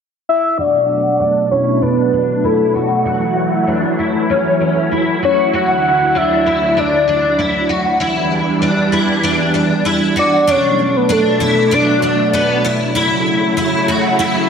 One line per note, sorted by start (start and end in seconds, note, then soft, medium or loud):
0.29 0.61 E5 loud
0.57 3.03 B2 medium
0.57 7.96 F#3 medium
0.57 5.49 A3 medium
0.57 3.03 D4 medium
0.57 1.20 F#4 medium
0.57 1.51 D5 loud
1.20 1.51 D4 medium
1.51 1.82 E4 medium
1.51 1.84 C#5 medium
1.82 2.12 D4 medium
1.82 2.47 B4 medium
2.13 2.44 D4 medium
2.44 2.74 E4 medium
2.44 2.91 A4 medium
2.75 3.04 F#4 medium
3.05 5.50 E3 medium
3.05 7.96 E4 medium
3.05 3.67 F#4 medium
3.67 3.98 D4 medium
3.99 4.30 E4 medium
4.30 4.59 C#4 medium
4.61 4.91 C#4 medium
4.91 5.22 E4 medium
5.23 5.52 F#4 medium
5.23 5.52 C#5 medium
5.53 7.98 D2 medium
5.53 7.98 D3 medium
5.53 6.15 F#4 medium
5.53 6.18 F#5 loud
6.15 6.46 D4 medium
6.15 6.80 E5 medium
6.46 6.77 E4 medium
6.77 7.06 D4 medium
6.77 7.71 D5 medium
7.08 7.39 D4 medium
7.39 7.69 E4 medium
7.69 8.00 F#4 medium
8.00 10.45 E2 medium
8.00 10.45 E3 medium
8.00 10.45 G3 medium
8.00 10.45 D4 medium
8.00 8.62 E4 medium
8.62 8.93 D4 medium
8.92 9.24 E4 medium
9.23 9.53 D4 medium
9.54 9.85 D4 medium
9.85 10.16 E4 medium
10.16 10.47 F#4 medium
10.16 10.52 D5 medium
10.47 12.93 B2 medium
10.47 14.49 F#3 medium
10.47 12.93 A3 medium
10.47 11.08 D4 medium
10.47 12.93 D4 medium
10.47 10.98 C#5 medium
10.96 11.13 B4 medium
11.09 11.40 D4 medium
11.09 11.75 A4 medium
11.40 11.71 E4 medium
11.71 12.01 D4 medium
11.71 12.65 D5 medium
12.02 12.33 D4 medium
12.33 12.64 B3 medium
12.65 12.94 E4 medium
12.95 14.49 C#3 medium
12.95 14.49 A3 medium
12.95 13.56 E4 medium
12.95 14.49 E4 medium
13.57 13.88 E4 medium
13.88 14.19 F#4 medium
14.19 14.49 E4 medium